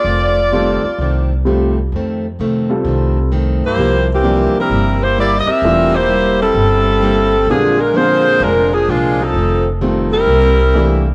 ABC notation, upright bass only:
X:1
M:4/4
L:1/8
Q:"Swing" 1/4=129
K:Cdor
V:1 name="Upright bass" clef=bass
F,,,3 z C,,4 | F,,2 C,2 C,,3 G,, | C,,3 z G,,,3 z | =E,,,4 G,,,4 |
B,,,4 F,,,2 C,,2 | F,,,4 C,,4 |]